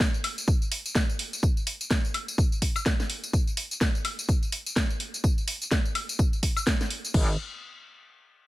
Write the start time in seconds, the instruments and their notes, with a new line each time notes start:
0.00 kick, snare, tambourine
0.14 tambourine
0.24 open hi-hat, high woodblock
0.38 tambourine
0.48 kick, tambourine
0.62 tambourine
0.72 open hi-hat
0.86 tambourine
0.95 kick, snare, tambourine
1.09 tambourine
1.19 open hi-hat
1.33 tambourine
1.43 kick, tambourine
1.57 tambourine
1.67 open hi-hat
1.81 tambourine
1.91 kick, snare, tambourine
2.05 tambourine
2.14 open hi-hat, high woodblock
2.28 tambourine
2.38 kick, tambourine
2.52 tambourine
2.62 kick, open hi-hat
2.76 tambourine, high woodblock
2.86 kick, snare, tambourine
3.00 snare, tambourine
3.10 open hi-hat
3.24 tambourine
3.33 kick, tambourine
3.47 tambourine
3.57 open hi-hat
3.71 tambourine
3.81 kick, snare, tambourine
3.95 tambourine
4.05 open hi-hat, high woodblock
4.19 tambourine
4.29 kick, tambourine
4.43 tambourine
4.52 open hi-hat
4.66 tambourine
4.76 kick, snare, tambourine
4.90 tambourine
5.00 open hi-hat
5.14 tambourine
5.24 kick, tambourine
5.38 tambourine
5.48 open hi-hat
5.62 tambourine
5.71 kick, snare, tambourine
5.85 tambourine
5.95 open hi-hat, high woodblock
6.09 tambourine
6.19 kick, tambourine
6.33 tambourine
6.43 kick, open hi-hat
6.57 tambourine, high woodblock
6.67 kick, snare, tambourine
6.81 snare, tambourine
6.90 open hi-hat
7.05 tambourine
7.14 wobble bass G#1, kick, crash